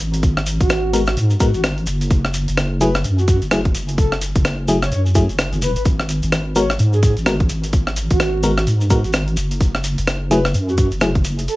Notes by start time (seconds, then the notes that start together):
0.00 G#1, closed hi-hat
0.14 closed hi-hat, shekere
0.23 kick, closed hi-hat, shekere
0.37 cross-stick
0.46 closed hi-hat, shekere
0.60 G#1 F#4, kick, closed hi-hat, shekere
0.69 cross-stick, closed hi-hat, shekere
0.93 G#3 B3 F#4 A#4, closed hi-hat, shekere
1.06 F#4, cross-stick, shekere
1.17 G#2, closed hi-hat, shekere
1.30 shekere
1.40 G#3 B3 F#4 A#4, kick, closed hi-hat, shekere
1.54 G#1 F#4, closed hi-hat, shekere
1.64 cross-stick, closed hi-hat, shekere
1.78 closed hi-hat
1.87 F#1, closed hi-hat, shekere
2.01 closed hi-hat, shekere
2.11 kick, closed hi-hat, shekere
2.25 cross-stick
2.34 closed hi-hat, shekere
2.48 F#1, closed hi-hat, shekere
2.57 cross-stick, closed hi-hat, shekere
2.81 F#3 A3 E4 G#4 B4, closed hi-hat, shekere
2.94 cross-stick, shekere
3.04 F#2, closed hi-hat, shekere
3.18 F#4, shekere
3.28 F#4, kick, closed hi-hat, shekere
3.42 F#1, closed hi-hat, shekere
3.51 F#3 A3 E4 G#4, cross-stick, closed hi-hat, shekere
3.65 kick, closed hi-hat
3.75 F#1, closed hi-hat, shekere
3.89 closed hi-hat, shekere
3.98 A4, kick, closed hi-hat, shekere
4.12 cross-stick
4.21 closed hi-hat, shekere
4.35 F#1, kick, closed hi-hat, shekere
4.45 cross-stick, closed hi-hat, shekere
4.68 F#3 A3 E4 G#4, closed hi-hat, shekere
4.82 C#5, cross-stick, shekere
4.92 F#2 C#5, closed hi-hat, shekere
5.06 shekere
5.15 F#3 A3 E4 G#4, kick, closed hi-hat, shekere
5.29 F#1, closed hi-hat, shekere
5.39 cross-stick, closed hi-hat, shekere
5.53 F#1, closed hi-hat, shekere
5.62 E1 B4, closed hi-hat, shekere
5.76 G#1 B4, closed hi-hat, shekere
5.85 kick, closed hi-hat, shekere
6.00 cross-stick
6.09 closed hi-hat, shekere
6.22 G#1, closed hi-hat, shekere
6.32 cross-stick, closed hi-hat, shekere
6.56 G#3 B3 F#4 A#4 C#5, closed hi-hat, shekere
6.70 cross-stick, shekere
6.79 G#2, closed hi-hat, shekere
6.93 G#4, shekere
7.03 G#4, kick, closed hi-hat, shekere
7.17 G#1, closed hi-hat, shekere
7.26 G#3 B3 F#4 A#4, cross-stick, closed hi-hat, shekere
7.40 kick, closed hi-hat
7.49 G#1, closed hi-hat, shekere
7.64 closed hi-hat, shekere
7.73 kick, closed hi-hat, shekere
7.87 cross-stick
7.96 closed hi-hat, shekere
8.10 G#1 F#4, kick, closed hi-hat, shekere
8.20 cross-stick, closed hi-hat, shekere
8.43 G#3 B3 F#4 A#4, closed hi-hat, shekere
8.57 F#4, cross-stick, shekere
8.67 G#2, closed hi-hat, shekere
8.81 shekere
8.90 G#3 B3 F#4 A#4, kick, closed hi-hat, shekere
9.04 G#1 F#4, closed hi-hat, shekere
9.13 cross-stick, closed hi-hat, shekere
9.28 closed hi-hat
9.37 F#1, closed hi-hat, shekere
9.51 closed hi-hat, shekere
9.61 kick, closed hi-hat, shekere
9.75 cross-stick
9.84 closed hi-hat, shekere
9.98 F#1, closed hi-hat, shekere
10.07 cross-stick, closed hi-hat, shekere
10.31 F#3 A3 E4 G#4 B4, closed hi-hat, shekere
10.45 cross-stick, shekere
10.54 F#2, closed hi-hat, shekere
10.68 F#4, shekere
10.78 F#4, kick, closed hi-hat, shekere
10.91 F#1, closed hi-hat, shekere
11.01 F#3 A3 E4 G#4, cross-stick, closed hi-hat, shekere
11.15 kick, closed hi-hat
11.24 F#1, closed hi-hat, shekere
11.39 closed hi-hat, shekere
11.48 A4, closed hi-hat, shekere